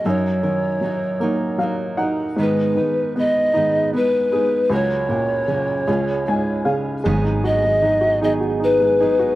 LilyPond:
<<
  \new Staff \with { instrumentName = "Pan flute" } { \time 6/8 \key gis \dorian \tempo 4. = 51 cis''2~ cis''8 r8 | b'4 dis''4 b'4 | cis''2~ cis''8 r8 | r8 dis''4 dis''8 b'4 | }
  \new Staff \with { instrumentName = "Steel-string acoustic guitar" } { \time 6/8 \key gis \dorian <fis dis' fis' ais'>8 <dis' fis' ais'>8 <fis dis' fis' ais'>8 <fis dis' fis' ais'>8 <fis dis' fis' ais'>8 <dis' fis' ais'>8 | <gis, dis gis b dis' b'>8 <gis b dis' b'>8 <gis b dis' b'>8 <gis, dis gis b dis' b'>8 <gis b dis' b'>8 <gis b dis' b'>8 | <cis fis cis' fis' ais'>8 <cis' fis' ais'>8 <fis cis' fis' ais'>8 <cis gis cis' eis' gis'>8 <gis cis' eis' gis'>8 <cis' eis' gis'>8 | <gis, dis fis b dis' gis'>4 <fis b dis' gis'>8 <gis, dis fis b dis' gis'>4 <fis b dis' gis'>8 | }
  \new Staff \with { instrumentName = "Upright piano" } { \time 6/8 \key gis \dorian fis,8 dis8 fis8 ais8 <fis eis''>8 <dis' fis''>8 | gis,8 dis8 b8 dis'8 b8 gis'8 | cis,8 ais,8 cis8 cis,8 <gis, gis''>8 <cis eis''>8 | gis16 dis'16 fis'16 gis16 dis'16 fis'16 dis'16 fis'16 dis'16 gis16 dis'16 fis'16 | }
  \new Staff \with { instrumentName = "Fretless electric bass" } { \clef bass \time 6/8 \key gis \dorian r2. | r2. | r2. | gis,,2. | }
>>